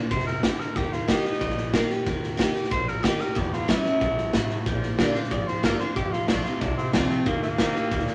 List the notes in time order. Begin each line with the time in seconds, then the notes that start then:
Already playing: D4 F4
0.11 F1 C3 C5, kick, snare
0.19 snare
0.27 A#4, snare
0.43 D3 G4, kick, snare, hi-hat pedal
0.59 A#4, muted upright bass stroke, snare
0.76 D#2 D#3 G4, kick, snare
0.92 F4, snare
1.08 D#3 A#3 D#4 G4, kick, snare, hi-hat pedal
1.25 D#4 G4, muted upright bass stroke, snare
1.33 snare
1.41 A#1 A#2, kick, snare
1.49 snare
1.57 snare
1.73 D#3 A#3 D#4 G4, kick, snare, hi-hat pedal
1.90 D#4 G4, snare
2.06 D#2 D#3, kick, snare
2.23 snare
2.37 D#3 A#3 D#4 G4, kick, snare, hi-hat pedal
2.54 D#4 G4, muted upright bass stroke, snare
2.64 snare
2.71 A#1 A#2 C5, kick, snare
2.88 A#4, snare
3.03 D#3 A#3 D#4 G4, kick, snare, hi-hat pedal
3.19 D#4 G4 A#4, muted upright bass stroke, snare
3.35 E2 B2 G4, kick, snare
3.53 F4, snare
3.68 E2 C#3 E3 G3 C#4 E4, kick, snare, hi-hat pedal
3.85 E2 B2 C#4 E4, muted upright bass stroke, snare
4.01 A#1 E2 G2 B2, kick, snare
4.18 snare
4.33 E2 A2 C#3, kick, snare, hi-hat pedal
4.50 E2 B2, muted upright bass stroke, snare
4.66 A#1 A#2 F3, kick, snare
4.83 snare
4.98 A#2 D3 G3 A#3 D4 F4, kick, snare, hi-hat pedal
5.14 A#2 F3 D4 F4, snare
5.23 snare
5.30 G#1 F2 A#2 F3 D5, kick, snare
5.47 C5, muted upright bass stroke, snare
5.63 G1 A#2 D3 G3 A#3 D4 F4 A#4, kick, snare, hi-hat pedal
5.79 A#2 F3 D4 F4 C5, snare
5.96 F1 F2 C3 G4, kick, snare
6.12 F4, muted upright bass stroke, snare
6.28 A#1 F2 D3 F3 A3 C4 D4 F4, kick, snare, hi-hat pedal
6.44 F2 C3 C4 F4, muted upright bass stroke, snare
6.61 C2 F2 C3 D4, kick, snare
6.77 C4, snare
6.93 D2 F2 D3 F3 G3 A3 C4 F4, kick, snare, hi-hat pedal
7.10 F2 C3 C4, muted upright bass stroke, snare
7.26 D#2 D#3 A#3, kick, snare
7.42 A#3, snare
7.58 D#3 A#3 C4 D#4 G4, kick, snare, hi-hat pedal
7.75 D#3 A#3 D#4 G4, muted upright bass stroke, snare
7.91 D2 A#2 D#3 A#3, kick, snare
7.99 snare
8.07 muted upright bass stroke, snare